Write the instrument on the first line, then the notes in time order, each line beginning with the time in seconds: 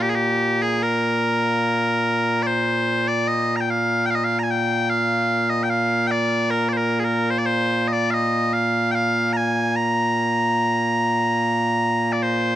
bagpipes
Already playing: A#2 A#3
0.02 G4
0.10 G#4
0.15 G4
0.62 G#4
0.83 A#4
2.43 D5
2.47 C5
3.08 D5
3.28 D#5
3.56 A#5
3.61 G5
3.70 F5
4.06 G5
4.10 F5
4.15 D#5
4.24 F5
4.39 A#5
4.43 G#5
4.51 G5
4.89 F5
5.50 D#5
5.63 G5
5.70 F5
6.07 G5
6.11 D5
6.50 A#4
6.69 D5
6.73 C5
6.77 A#4
6.99 G#4
7.04 A#4
7.30 C5
7.38 D5
7.46 C5
7.88 D#5
7.93 D5
8.11 D#5 F5
8.53 F5
8.91 F5 G5
9.33 G#5 A#5
9.76 A#5
12.13 D5
12.23 C5